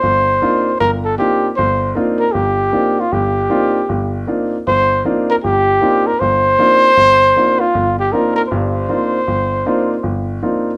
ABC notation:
X:1
M:4/4
L:1/16
Q:"Swing" 1/4=156
K:Cm
V:1 name="Trumpet"
c8 B2 =A2 G3 z | c4 z2 B2 G6 F2 | G12 z4 | c4 z2 B2 G6 B2 |
c12- c2 F2- | F2 G2 B2 B2 c8- | c12 z4 |]
V:2 name="Grand piano"
G,,,4 [B,CDEF]2 z2 G,,,4 [B,CDEF]2 z2 | G,,,4 [B,CDEF]2 z2 G,,,4 [B,CDEF]2 z2 | G,,,4 [B,CDEF]2 z2 G,,,4 [B,CDEF]2 z2 | G,,,4 [B,CDEF]2 z2 G,,,4 [B,CDEF]2 z2 |
G,,,4 [B,CDEF]2 z2 G,,,4 [B,CDEF]2 z2 | G,,,4 [B,CDEF]2 z2 [G,,,G,,]4 [B,CDEF]2 z2 | G,,,4 [B,CDEF]2 z2 G,,,4 [B,CDEF]2 z2 |]